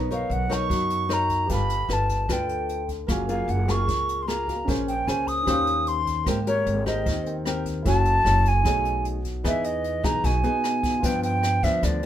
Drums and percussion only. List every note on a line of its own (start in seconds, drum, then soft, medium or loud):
0.11 closed hi-hat soft
0.31 closed hi-hat soft
0.50 kick soft
0.50 cross-stick medium
0.50 closed hi-hat soft
0.70 kick medium
0.70 closed hi-hat soft
0.90 closed hi-hat soft
1.10 cross-stick medium
1.10 closed hi-hat soft
1.29 kick soft
1.29 closed hi-hat soft
1.49 kick medium
1.49 closed hi-hat medium
1.70 closed hi-hat soft
1.89 cross-stick medium
1.89 closed hi-hat soft
2.09 kick soft
2.09 closed hi-hat soft
2.29 kick medium
2.29 cross-stick medium
2.29 closed hi-hat medium
2.49 closed hi-hat soft
2.69 closed hi-hat soft
2.89 kick soft
2.89 closed hi-hat soft
3.08 kick medium
3.08 cross-stick medium
3.08 closed hi-hat soft
3.29 closed hi-hat soft
3.48 closed hi-hat soft
3.68 kick soft
3.68 cross-stick medium
3.68 closed hi-hat soft
3.88 kick medium
3.88 closed hi-hat medium
4.09 closed hi-hat soft
4.29 cross-stick medium
4.29 closed hi-hat soft
4.48 kick soft
4.48 closed hi-hat soft
4.68 kick medium
4.68 closed hi-hat medium
4.88 closed hi-hat soft
5.08 cross-stick medium
5.08 closed hi-hat soft
5.27 kick soft
5.27 closed hi-hat soft
5.47 kick medium
5.47 cross-stick medium
5.47 closed hi-hat medium
5.67 closed hi-hat soft
5.87 closed hi-hat soft
6.07 kick soft
6.07 closed hi-hat soft
6.26 kick medium
6.26 cross-stick medium
6.26 closed hi-hat medium
6.47 closed hi-hat soft
6.66 closed hi-hat soft
6.86 kick soft
6.86 cross-stick medium
6.86 closed hi-hat soft
7.06 kick medium
7.06 closed hi-hat soft
7.26 closed hi-hat soft
7.45 cross-stick medium
7.45 closed hi-hat soft
7.65 kick soft
7.65 closed hi-hat soft
7.85 kick medium
7.85 closed hi-hat medium
8.05 closed hi-hat soft
8.25 cross-stick medium
8.25 closed hi-hat soft
8.45 kick soft
8.45 closed hi-hat soft
8.65 kick medium
8.65 cross-stick medium
8.65 closed hi-hat medium
8.85 closed hi-hat soft
9.05 closed hi-hat soft
9.25 kick soft
9.25 closed hi-hat soft
9.44 kick medium
9.44 cross-stick medium
9.44 closed hi-hat medium
9.64 closed hi-hat soft
9.84 closed hi-hat soft
10.04 kick medium
10.04 cross-stick medium
10.04 closed hi-hat soft
10.24 kick medium
10.24 closed hi-hat medium
10.44 closed hi-hat soft
10.64 cross-stick medium
10.64 closed hi-hat soft
10.83 kick medium
10.83 closed hi-hat soft
11.03 kick medium
11.03 closed hi-hat medium
11.23 closed hi-hat soft
11.43 cross-stick medium
11.43 closed hi-hat soft
11.63 kick medium
11.63 closed hi-hat soft
11.83 kick medium
11.83 cross-stick medium
11.83 closed hi-hat medium
12.03 closed hi-hat soft